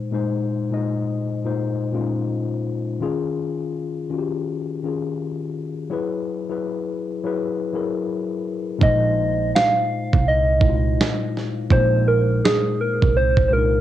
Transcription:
Already playing: tine electric piano A#2 G#3 D#4 C5
0.12 tine electric piano A#2 G#3 D#4 C5
0.71 tine electric piano A#2 G#3 D#4 D#5
1.44 tine electric piano A#2 G#3 D#4 C5
1.92 tine electric piano A#2 G#3 C#4 F4
2.01 tine electric piano D#4
3.00 tine electric piano D#3 C#4 F4 G#4
4.09 tine electric piano D#3 C#4 F4 F#4
4.18 tine electric piano G4
4.83 tine electric piano D#3 C#4 F4 G#4
5.90 tine electric piano F#3 E4 G#4 B4
6.49 tine electric piano F#3 E4 G#4 B4
7.24 tine electric piano F#3 E4 G#4 B4
7.73 tine electric piano F#3 E4 G#4 A#4
8.78 upright bass A#1, tine electric piano A#2 G#3 D#4 C5, kick
8.83 soft synth lead D#5
9.55 soft synth lead F5, snare
10.13 upright bass C2, kick
10.28 soft synth lead D#5
10.60 tine electric piano A#2 G#3 D#4 E4, kick
10.69 tine electric piano F4
11.01 snare
11.37 snare
11.71 upright bass A#1, tine electric piano A#2 G#3 D#4 C5, soft synth lead C5, kick
12.08 soft synth lead A#4
12.45 soft synth lead G#4, snare
12.81 soft synth lead A#4
13.02 upright bass C2, kick
13.17 soft synth lead C5
13.37 kick
13.48 tine electric piano A#2 G#3 D4, soft synth lead C5
13.52 tine electric piano F4, soft synth lead A#4
13.58 tine electric piano D#4

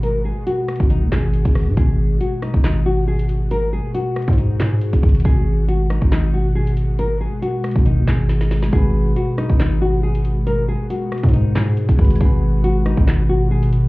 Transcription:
Already playing: 808-style bass G#1, ambient pad B2 G#3 F#4, synth keys G#3 F#4 B4
0.03 nylon-string guitar A#4, closed hi-hat
0.25 nylon-string guitar G#4
0.47 nylon-string guitar F#4, closed hi-hat
0.68 cross-stick, closed hi-hat
0.76 closed hi-hat
0.80 808-style bass G#1, kick, closed hi-hat
0.90 nylon-string guitar D#4, closed hi-hat
1.02 808-style bass D#2
1.12 808-style bass G#1, nylon-string guitar G#4, snare, clap
1.34 closed hi-hat
1.45 808-style bass G#1, kick, closed hi-hat
1.55 cross-stick, open hi-hat
1.67 808-style bass G#2
1.77 808-style bass G#1, ambient pad F#4, nylon-string guitar G#4, kick, closed hi-hat
2.21 nylon-string guitar F#4, closed hi-hat
2.42 nylon-string guitar D#4, cross-stick, closed hi-hat
2.54 808-style bass G#1, kick
2.64 nylon-string guitar D#4, snare, clap, closed hi-hat
2.86 nylon-string guitar F#4
3.08 nylon-string guitar G#4
3.19 closed hi-hat
3.29 closed hi-hat
3.51 nylon-string guitar A#4, closed hi-hat
3.73 nylon-string guitar G#4
3.95 nylon-string guitar F#4, closed hi-hat
4.16 cross-stick, closed hi-hat
4.22 closed hi-hat
4.28 808-style bass G#2, kick, closed hi-hat
4.33 closed hi-hat
4.38 nylon-string guitar D#4, closed hi-hat
4.60 808-style bass G#2, nylon-string guitar G#4, snare, clap
4.81 closed hi-hat
4.93 808-style bass G#1, kick, closed hi-hat
5.03 808-style bass G#1, kick, closed hi-hat
5.09 closed hi-hat
5.15 closed hi-hat
5.20 closed hi-hat
5.25 808-style bass G#1, ambient pad B2 G#3, nylon-string guitar G#4, kick, closed hi-hat
5.68 nylon-string guitar F#4, closed hi-hat
5.90 nylon-string guitar D#4, cross-stick, closed hi-hat
6.02 808-style bass G#1, kick
6.12 nylon-string guitar D#4, snare, clap, closed hi-hat
6.34 nylon-string guitar F#4
6.55 nylon-string guitar G#4
6.67 closed hi-hat
6.77 closed hi-hat
6.99 nylon-string guitar A#4, closed hi-hat
7.21 nylon-string guitar G#4
7.42 nylon-string guitar F#4, closed hi-hat
7.64 cross-stick, closed hi-hat
7.71 closed hi-hat
7.76 808-style bass G#1, kick, closed hi-hat
7.86 nylon-string guitar D#4, closed hi-hat
7.97 808-style bass D#2
8.08 808-style bass G#1, nylon-string guitar G#4, snare, clap
8.29 snare, closed hi-hat
8.41 snare, closed hi-hat
8.51 snare, open hi-hat
8.63 snare
8.68 synth keys G#3
8.73 808-style bass G#1, ambient pad B2 G#3 F#4, synth keys F#4, nylon-string guitar G#4, kick, closed hi-hat
8.78 synth keys B4
9.16 nylon-string guitar F#4, closed hi-hat
9.38 nylon-string guitar D#4, cross-stick, closed hi-hat
9.49 808-style bass G#1, kick
9.60 nylon-string guitar D#4, snare, clap, closed hi-hat
9.81 nylon-string guitar F#4
10.03 nylon-string guitar G#4
10.15 closed hi-hat
10.25 closed hi-hat
10.47 nylon-string guitar A#4, closed hi-hat
10.68 nylon-string guitar G#4
10.90 nylon-string guitar F#4, closed hi-hat
11.12 cross-stick, closed hi-hat
11.18 closed hi-hat
11.23 808-style bass G#2, kick, closed hi-hat
11.29 closed hi-hat
11.34 nylon-string guitar D#4, closed hi-hat
11.55 808-style bass G#2, nylon-string guitar G#4, snare, clap
11.77 closed hi-hat
11.89 808-style bass G#1, kick, closed hi-hat
11.96 808-style bass G#1, synth keys G#3 F#4, kick, closed hi-hat
12.01 synth keys B4, closed hi-hat
12.10 closed hi-hat
12.16 synth keys G#3, closed hi-hat
12.21 808-style bass G#1, ambient pad G#3, synth keys F#4, nylon-string guitar G#4, kick, closed hi-hat
12.25 synth keys B4
12.64 nylon-string guitar F#4, closed hi-hat
12.86 nylon-string guitar D#4, cross-stick, closed hi-hat
12.97 808-style bass G#1, kick
13.07 nylon-string guitar D#4, snare, clap, closed hi-hat
13.29 nylon-string guitar F#4
13.51 nylon-string guitar G#4
13.63 closed hi-hat
13.73 closed hi-hat

